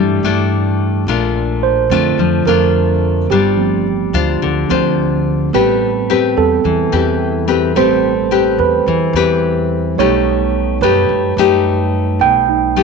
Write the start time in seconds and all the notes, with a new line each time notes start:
Already playing: G2 E3 G3 A3 D4 E4 G4
0.23 G2 A3 D4 E4
1.07 A#1 A#2 A3 D4 F4
1.63 C5
1.90 F2 D3 A3 C4 D4 F4
2.18 F2 F3
2.45 F2 A3 D4 F4 A#4
3.30 G1 G3 D4 F4 G4 C5
3.56 F3 A3 C4
4.13 D2 D4 F4 C5
4.42 D2 D3
4.69 D2 F3 A3 C4 D4 F4 C5
5.53 A1 G3 A3 B3 C4 G4 B4
6.10 C4 G4 B4
6.37 E2 G3 B3 C4 A4
6.64 E2 E3
6.92 E2 C4 G4 B4
7.48 C4 G4 B4
7.75 A1 G3 A3 C4 G4 B4 C5
8.31 C4 G4 B4
8.58 E2 B4
8.86 E2 E3
9.13 E2 C4 G4 B4
9.98 B1 B2 G3 A3 D#4 G4 C#5
10.81 F#2 A3 D#4 G4 B4
11.09 F#2
11.37 F#2 A3 D#4 G4
12.19 B1 B2 G5
12.48 A3 D#4
12.76 A3 D#4 G4